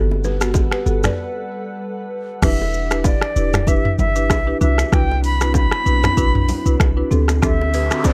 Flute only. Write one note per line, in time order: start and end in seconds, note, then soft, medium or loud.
2.43 3.07 E5 medium
3.05 3.69 D5 medium
3.68 3.99 E5 medium
3.99 4.58 E5 loud
4.62 4.95 E5 medium
4.93 5.24 G5 loud
5.25 5.53 B5 loud
5.56 6.76 B5 loud
7.43 8.07 E5 loud
8.06 8.13 D5 medium